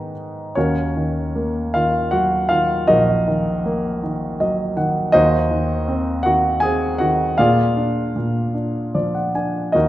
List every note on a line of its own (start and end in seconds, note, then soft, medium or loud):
0.00 0.52 G#2 medium
0.00 0.58 D#3 soft
0.00 0.52 B3 medium
0.00 0.53 D#4 soft
0.00 0.11 B4 medium
0.00 0.12 D#5 medium
0.00 0.11 G#5 medium
0.55 2.86 D#2 medium
0.55 1.71 C#4 medium
0.55 1.71 F#4 medium
0.55 1.71 A#4 medium
0.55 1.78 C#5 medium
0.96 1.73 D#3 soft
1.35 2.85 A#3 soft
1.74 2.50 D#3 soft
1.74 2.10 F4 medium
1.74 2.13 F5 medium
2.11 3.62 F#3 soft
2.11 2.48 F#4 medium
2.11 2.51 F#5 medium
2.49 3.26 D#3 soft
2.49 2.86 F4 medium
2.49 2.85 F5 medium
2.87 5.11 A#1 medium
2.87 4.74 D#4 medium
2.87 4.74 F#4 medium
2.87 4.74 A#4 medium
2.87 4.39 D#5 medium
3.28 4.02 D#3 soft
3.66 5.11 A#3 medium
4.03 4.75 D#3 medium
4.40 5.12 F#3 medium
4.40 4.75 D#5 medium
4.77 5.13 D#3 medium
4.77 5.12 F#5 medium
5.12 7.34 D#2 medium
5.12 6.21 D#4 medium
5.12 6.21 F#4 medium
5.12 6.21 C5 medium
5.12 6.27 D#5 medium
5.50 6.23 D#3 medium
5.88 6.62 C4 medium
6.23 6.99 D#3 medium
6.23 6.61 F#4 medium
6.23 6.59 F#5 medium
6.60 7.37 C4 medium
6.60 6.98 G#4 medium
6.60 6.97 G#5 medium
6.98 7.37 D#3 medium
6.98 7.36 F#4 medium
6.98 7.39 F#5 medium
7.38 8.14 A#2 medium
7.38 9.31 F4 medium
7.38 9.31 G#4 medium
7.38 8.93 D5 medium
7.38 9.30 F5 medium
7.77 8.53 D4 soft
8.16 9.71 A#2 medium
8.54 9.34 D4 soft
8.95 9.73 F3 soft
8.95 9.13 D5 medium
9.15 9.33 F#5 medium
9.35 9.74 D4 soft
9.35 9.72 G#5 medium
9.72 9.88 D#2 medium
9.72 9.88 D#4 medium
9.72 9.88 F#4 medium
9.72 9.88 A#4 medium
9.72 9.88 D#5 medium